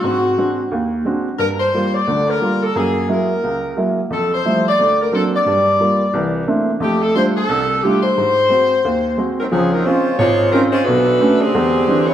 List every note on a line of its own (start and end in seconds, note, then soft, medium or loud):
0.00 0.33 G#2 medium
0.00 0.57 F#4 medium
0.04 0.33 C4 soft
0.38 0.60 G#3 soft
0.38 0.60 C4 soft
0.38 0.60 D4 soft
0.38 0.60 F#4 soft
0.72 1.00 D#2 medium
1.05 1.27 G#3 soft
1.05 1.28 C4 soft
1.05 1.28 D4 soft
1.05 1.28 F#4 medium
1.39 1.68 G2 medium
1.39 1.48 A#4 medium
1.60 1.91 C5 medium
1.74 1.96 G3 soft
1.74 1.96 A#3 soft
1.74 1.96 F4 medium
1.95 2.28 D5 loud
2.07 2.36 D2 medium
2.07 2.36 D3 medium
2.29 2.62 A#4 medium
2.41 2.63 G3 soft
2.41 2.63 A#3 soft
2.41 2.64 F4 soft
2.63 2.75 A4 medium
2.75 3.04 F#2 medium
2.75 3.04 A#3 medium
2.75 3.07 G#4 medium
3.08 3.30 F#3 soft
3.08 3.31 G#3 soft
3.08 3.31 A#3 soft
3.08 3.31 E4 soft
3.08 3.78 A#4 medium
3.44 3.72 C#2 soft
3.76 3.98 F#3 soft
3.76 3.99 G#3 soft
3.76 3.99 A#3 soft
3.76 3.99 E4 soft
4.10 4.39 F2 medium
4.10 4.31 A4 medium
4.34 4.64 C5 medium
4.45 4.67 F3 soft
4.45 4.67 G3 soft
4.45 4.67 A3 soft
4.45 4.67 E4 soft
4.69 4.98 D5 loud
4.79 5.07 D2 soft
5.01 5.12 A#4 medium
5.12 5.34 F#3 soft
5.12 5.34 A#3 soft
5.12 5.34 C4 soft
5.12 5.34 D4 soft
5.12 5.23 A4 medium
5.36 6.32 D5 medium
5.46 5.75 G2 medium
5.46 5.74 G3 medium
5.79 6.01 G3 soft
5.79 6.02 A#3 soft
5.79 6.02 F4 soft
6.13 6.42 C2 medium
6.13 6.42 E3 medium
6.47 6.69 A3 soft
6.47 6.69 A#3 soft
6.47 6.69 C4 soft
6.47 6.69 D4 soft
6.47 6.70 E4 soft
6.80 7.09 F2 medium
6.80 7.09 A3 medium
6.80 7.01 G4 medium
7.03 7.15 A4 medium
7.15 7.37 G3 soft
7.15 7.37 A3 soft
7.15 7.37 D4 soft
7.15 7.37 F4 soft
7.15 7.25 C5 medium
7.36 7.79 A4 medium
7.49 7.78 C2 medium
7.83 8.05 G3 soft
7.83 8.05 A3 soft
7.83 8.05 D4 soft
7.83 8.05 F4 medium
7.83 8.03 G4 medium
8.03 9.34 C5 loud
8.17 8.46 G#2 medium
8.49 8.72 G#3 soft
8.49 8.72 C4 soft
8.49 8.72 F#4 medium
8.85 9.13 D#2 medium
9.18 9.40 G#3 soft
9.18 9.40 C4 soft
9.18 9.40 F#4 soft
9.39 9.46 F#3 medium
9.39 9.45 C4 medium
9.39 9.46 D#4 medium
9.39 9.45 A#4 medium
9.52 9.80 C#2 medium
9.52 9.80 F3 medium
9.52 9.71 F3 medium
9.52 9.71 C4 medium
9.52 9.71 C#4 medium
9.52 9.71 G#4 medium
9.73 9.85 F#3 medium
9.73 9.85 C4 medium
9.73 9.85 D#4 medium
9.73 9.85 A#4 medium
9.85 10.18 G#3 medium
9.85 10.07 C4 soft
9.85 10.19 C#4 medium
9.85 10.07 C#4 soft
9.85 10.18 F4 medium
9.85 10.08 F4 medium
9.85 10.18 C5 medium
10.19 10.48 G#1 medium
10.19 10.50 G#3 medium
10.19 10.50 F4 medium
10.19 10.50 C5 loud
10.19 10.50 C#5 loud
10.52 10.61 F#3 medium
10.52 10.62 C4 medium
10.52 10.75 C4 medium
10.52 10.75 C#4 soft
10.52 10.62 D#4 medium
10.52 10.75 F4 medium
10.52 10.62 A#4 loud
10.72 10.85 G#3 medium
10.72 10.85 C#4 medium
10.72 10.84 F4 medium
10.72 10.85 C5 loud
10.85 11.16 B1 medium
10.85 11.40 A3 loud
10.85 11.40 D4 medium
10.85 11.40 F#4 medium
10.85 11.40 B4 loud
11.20 11.42 A3 soft
11.20 11.42 B3 soft
11.20 11.43 C#4 soft
11.20 11.43 D4 medium
11.41 12.09 D3 medium
11.41 12.09 C4 medium
11.41 12.09 G4 medium
11.41 12.07 G#4 loud
11.54 11.83 E2 medium
11.54 11.83 G#3 medium
11.88 12.10 E3 medium
11.88 12.10 G#3 soft
11.88 12.10 C4 soft
11.88 12.10 D4 medium
12.08 12.14 B3 medium
12.08 12.14 E4 medium
12.08 12.14 G#4 medium
12.08 12.14 C#5 loud